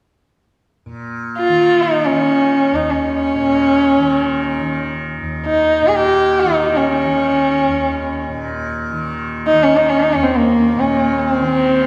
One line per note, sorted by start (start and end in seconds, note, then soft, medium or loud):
0.86 3.35 A#2 soft
1.39 1.84 F4 medium
1.48 2.08 D#3 soft
1.82 2.08 D#4 medium
2.06 3.98 D#3 soft
2.06 2.76 C#4 medium
2.72 5.20 D#2 soft
2.72 2.92 D#4 medium
2.90 4.75 C#4 medium
3.35 5.81 A#2 soft
3.98 4.58 D#3 soft
4.58 6.43 D#3 soft
5.20 7.67 D#2 soft
5.46 5.89 D#4 medium
5.82 8.29 A#2 medium
5.87 5.97 G#4 medium
5.95 6.42 G4 medium
6.40 7.05 D#3 soft
6.40 6.73 D#4 medium
6.74 6.92 C#4 medium
6.74 6.79 D#4 soft
6.93 8.23 C#4 medium
7.05 8.90 D#3 soft
7.68 10.14 D#2 soft
8.29 10.75 A#2 soft
8.90 9.52 D#3 soft
9.47 9.64 D#4 medium
9.52 11.39 D#3 soft
9.63 9.78 C#4 medium
9.76 9.91 D#4 medium
9.89 10.01 C#4 medium
10.00 10.11 D#4 medium
10.10 10.25 C#4 medium
10.15 11.87 D#2 medium
10.23 10.38 C4 medium
10.36 10.81 A#3 medium
10.76 11.87 A#2 soft
10.76 11.20 C#4 medium
11.20 11.31 C#4 medium
11.31 11.84 C4 medium
11.39 11.87 D#3 soft
11.82 11.87 C#4 medium